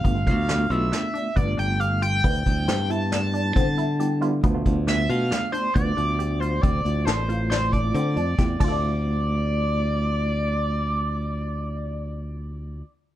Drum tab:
CC |----------|----------|----------|---------x|
HH |xxxxxxxxxx|xxxxxxxxxx|xxxxxxxxxx|xxxxxxxxx-|
SD |--o-o-----|--o-o-----|--o-o-----|--o-o---o-|
BD |oo----o---|oo----o---|oo----o---|o----o--oo|

CC |----------|----------|
HH |----------|----------|
SD |----------|----------|
BD |----------|----------|